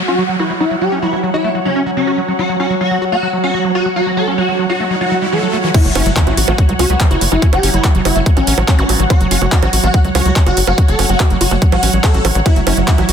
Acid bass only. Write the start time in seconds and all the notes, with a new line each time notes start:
0.08 C#4
0.18 F#3
0.29 F#3
0.39 F#4
0.50 F#3
0.60 F#3
0.71 F#3
0.81 F#3
0.92 C#4
1.02 F#3
1.13 F#3
1.23 F#3
1.34 F#4
1.44 A3
1.55 F#3
1.65 F#3
1.76 C#4
1.86 F#3
1.97 F#3
2.07 F#4
2.18 F#3
2.28 F#3
2.39 F#3
2.49 F#3
2.60 C#4
2.70 F#3
2.81 F#3
2.91 F#3
3.02 F#4
3.12 A3
3.23 F#3
3.33 F#3
3.44 C#4
3.54 F#3
3.65 F#3
3.75 F#4
3.86 F#3
3.96 F#3
4.07 F#3
4.17 F#3
4.28 C#4
4.38 F#3
4.49 F#3
4.59 F#3
4.70 F#4
4.80 A3
4.91 F#3
5.01 F#3
5.11 F#3
5.22 G3
5.32 E3
5.43 F#3
5.53 A3
5.64 E3
5.74 F#3
5.85 F#3
5.95 C#4
6.06 F#3
6.16 F#3
6.27 F#3
6.37 F#4
6.48 A3
6.58 F#3
6.69 F#3
6.79 C#4
6.90 F#3
7.00 F#3
7.11 F#4
7.21 F#3
7.32 F#3
7.42 F#3
7.53 F#3
7.63 C#4
7.74 F#3
7.84 F#3
7.95 F#3
8.05 F#4
8.16 A3
8.26 F#3
8.37 F#3
8.47 C#4
8.58 F#3
8.68 F#3
8.79 F#4
8.89 F#3
9.00 F#3
9.10 F#3
9.21 F#3
9.31 C#4
9.42 F#3
9.52 F#3
9.63 F#3
9.73 F#4
9.84 A3
9.94 F#3
10.05 F#3
10.15 C#4
10.26 F#3
10.36 F#3
10.46 F#4
10.57 F#3
10.68 F#3
10.78 F#3
10.88 F#3
10.99 C#4
11.09 F#3
11.20 F#3
11.30 F#3
11.41 F#4
11.51 A3
11.62 F#3
11.72 F#3
11.83 C#4
11.93 F#3
12.04 F#3
12.14 F#4
12.25 F#3
12.35 F#3
12.46 F#3
12.56 F#3
12.67 C#4
12.77 F#3
12.88 F#3
12.98 F#3
13.09 F#4